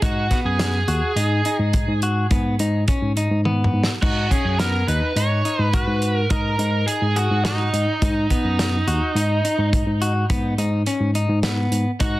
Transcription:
0.02 G#2 D#4 F#4, kick, closed hi-hat
0.31 B3, kick, snare, closed hi-hat
0.45 F#2 G#4
0.59 snare, closed hi-hat
0.88 D#2 F#4, closed hi-hat
1.16 G#2 D#4, closed hi-hat
1.45 D#4, closed hi-hat
1.59 G#2
1.73 kick, closed hi-hat
1.88 G#2
2.02 F#4, closed hi-hat
2.31 G#2 B3, kick, closed hi-hat
2.59 G#2 D#4, closed hi-hat
2.88 C#4, kick, closed hi-hat
3.02 G#2
3.17 D#4, closed hi-hat
3.30 G#2
3.45 B3, high tom
3.64 mid tom
3.73 G#2
3.83 snare
4.02 G#2 D#4 F#4, kick, crash
4.31 C#4 G#4, kick, closed hi-hat
4.45 F#2
4.60 B3 A#4, snare, closed hi-hat
4.88 D#2 D#4 B4, closed hi-hat
5.16 G#2 D#4 C#5, closed hi-hat
5.45 D#4, closed hi-hat
5.59 G#2 B4
5.73 F#4 B4, kick, closed hi-hat
5.87 G#2
6.02 closed hi-hat
6.16 A#4
6.30 G#2 D#4 A#4, kick, closed hi-hat
6.58 G#2 D#4, closed hi-hat
6.87 G#4, closed hi-hat
7.02 G#2
7.16 F#4 G#4, closed hi-hat
7.30 G#2
7.45 D#4 F#4, snare, closed hi-hat
7.73 G#2 D#4, closed hi-hat
8.02 G#2 D#4, kick, closed hi-hat
8.30 B3, kick, closed hi-hat
8.44 F#2
8.59 snare, closed hi-hat
8.87 D#2 F#4, closed hi-hat
9.16 G#2 D#4, closed hi-hat
9.45 D#4, closed hi-hat
9.58 G#2
9.73 kick, closed hi-hat
9.87 G#2
10.02 F#4, closed hi-hat
10.30 G#2 B3, kick, closed hi-hat
10.58 G#2 D#4, closed hi-hat
10.86 C#4, closed hi-hat
11.01 G#2
11.15 D#4, closed hi-hat
11.29 G#2
11.43 B3, snare, closed hi-hat
11.72 G#2, closed hi-hat
12.00 G#2 D#4 F#4, kick, closed hi-hat

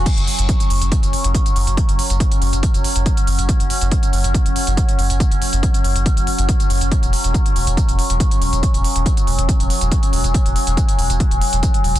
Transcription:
0.06 F#3 C#4, kick, closed hi-hat, crash
0.17 F#1, closed hi-hat
0.27 open hi-hat
0.39 F#1, closed hi-hat
0.49 kick, closed hi-hat
0.60 closed hi-hat
0.70 F#1, open hi-hat
0.82 F#1, closed hi-hat
0.92 kick, closed hi-hat
1.03 F#1, closed hi-hat
1.13 open hi-hat
1.24 F#1, closed hi-hat
1.35 kick, closed hi-hat
1.46 closed hi-hat
1.56 F#1, open hi-hat
1.67 F#1, closed hi-hat
1.77 kick, closed hi-hat
1.89 F#1, closed hi-hat
1.99 open hi-hat
2.10 F#1, closed hi-hat
2.20 kick, closed hi-hat
2.32 closed hi-hat
2.42 F#1, open hi-hat
2.53 F#1, closed hi-hat
2.63 kick, closed hi-hat
2.74 F#1, closed hi-hat
2.84 open hi-hat
2.96 F#1, closed hi-hat
3.06 kick, closed hi-hat
3.17 closed hi-hat
3.27 F#1, open hi-hat
3.39 F#1, closed hi-hat
3.49 kick, closed hi-hat
3.60 F#1, closed hi-hat
3.70 open hi-hat
3.81 F#1, closed hi-hat
3.92 kick, closed hi-hat
4.03 closed hi-hat
4.13 F#1, open hi-hat
4.24 F#1, closed hi-hat
4.34 kick, closed hi-hat
4.46 F#1, closed hi-hat
4.56 open hi-hat
4.67 F#1, closed hi-hat
4.77 kick, closed hi-hat
4.89 closed hi-hat
4.99 F#1, open hi-hat
5.10 F#1, closed hi-hat
5.20 kick, closed hi-hat
5.31 F#1, closed hi-hat
5.42 open hi-hat
5.53 F#1, closed hi-hat
5.63 kick, closed hi-hat
5.74 closed hi-hat
5.84 F#1, open hi-hat
5.96 F#1, closed hi-hat
6.06 kick, closed hi-hat
6.17 F#1, closed hi-hat
6.27 open hi-hat
6.38 F#1, closed hi-hat
6.49 kick, closed hi-hat
6.60 closed hi-hat
6.70 F#1, open hi-hat
6.81 F#1, closed hi-hat
6.92 kick, closed hi-hat
7.03 E1, closed hi-hat
7.13 open hi-hat
7.24 E1, closed hi-hat
7.34 kick, closed hi-hat
7.46 closed hi-hat
7.56 E1, open hi-hat
7.67 E1, closed hi-hat
7.77 kick, closed hi-hat
7.89 E1, closed hi-hat
7.99 open hi-hat
8.10 E1, closed hi-hat
8.20 kick, closed hi-hat
8.31 closed hi-hat
8.41 E1, open hi-hat
8.53 E1, closed hi-hat
8.63 kick, closed hi-hat
8.74 E1, closed hi-hat
8.84 open hi-hat
8.96 E1, closed hi-hat
9.06 kick, closed hi-hat
9.17 closed hi-hat
9.27 E1, open hi-hat
9.38 E1, closed hi-hat
9.49 kick, closed hi-hat
9.60 E1, closed hi-hat
9.70 open hi-hat
9.81 E1, closed hi-hat
9.92 kick, closed hi-hat
10.03 closed hi-hat
10.13 E1, open hi-hat
10.24 E1, closed hi-hat
10.34 kick, closed hi-hat
10.46 E1, closed hi-hat
10.56 open hi-hat
10.67 E1, closed hi-hat
10.77 kick, closed hi-hat
10.89 closed hi-hat
10.99 E1, open hi-hat
11.10 E1, closed hi-hat
11.20 kick, closed hi-hat
11.31 E1, closed hi-hat
11.41 open hi-hat
11.53 E1, closed hi-hat
11.63 kick, closed hi-hat
11.74 closed hi-hat
11.84 E1, open hi-hat
11.96 E1, closed hi-hat

